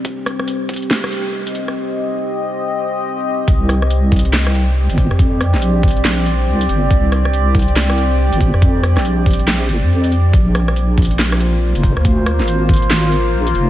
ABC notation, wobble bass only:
X:1
M:4/4
L:1/16
Q:"Swing 16ths" 1/4=140
K:Cm
V:1 name="Wobble bass" clef=bass
z16 | z16 | C,,12- C,, G,,,2 F,,- | F,,3 B,,,8- B,,, C,,2 G,,,2 |
C,,12- C,, G,,,2 F,,- | F,,3 B,,,6- B,,, G,,, F,,4- F,, | B,,,12- B,,, F,,,2 D,,- | D,,3 A,,,8- A,,, B,,,2 F,,,2 |]